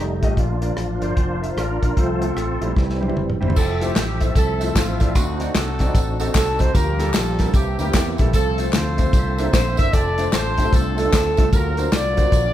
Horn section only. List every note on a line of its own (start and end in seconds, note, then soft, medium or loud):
3.57 3.80 C4 medium
3.57 3.80 E4 medium
3.57 3.80 A4 medium
3.81 4.36 C4 medium
3.81 4.36 E4 medium
3.81 4.21 G4 medium
4.37 4.75 C4 medium
4.37 5.12 E4 medium
4.37 4.73 A4 medium
4.76 5.13 A3 medium
4.76 5.13 C4 medium
4.76 5.16 F4 medium
5.16 5.91 A3 medium
5.16 5.54 C4 medium
5.16 5.54 F#4 medium
5.55 6.31 C4 medium
5.55 6.31 F#4 medium
5.55 6.20 A4 loud
6.35 6.58 A4 medium
6.60 6.75 C5 medium
6.75 7.15 F4 medium
6.75 7.50 G4 medium
6.75 7.14 A#4 loud
7.15 7.52 F4 medium
7.15 7.55 A4 loud
7.55 7.79 A#3 medium
7.55 7.78 E4 medium
7.55 7.78 G4 medium
7.79 8.30 A#3 medium
7.79 8.30 E4 medium
7.79 8.08 G4 medium
8.34 9.10 C4 medium
8.34 8.73 F4 medium
8.34 8.71 A4 loud
8.74 9.49 F4 medium
8.74 9.50 A4 medium
8.74 9.52 C5 loud
9.53 9.76 C5 medium
9.78 9.92 E5 loud
9.93 10.33 A4 medium
9.93 10.33 D5 loud
10.34 10.73 A4 medium
10.34 10.73 C5 loud
10.74 10.98 C4 medium
10.74 10.98 D4 medium
10.74 10.97 A4 loud
10.99 11.50 C4 medium
10.99 11.50 D4 medium
10.99 11.49 A4 medium
11.54 11.93 F4 medium
11.54 11.93 F#4 medium
11.54 11.93 A#4 loud
11.94 12.53 F4 medium
11.94 12.53 F#4 medium
11.94 12.53 D5 loud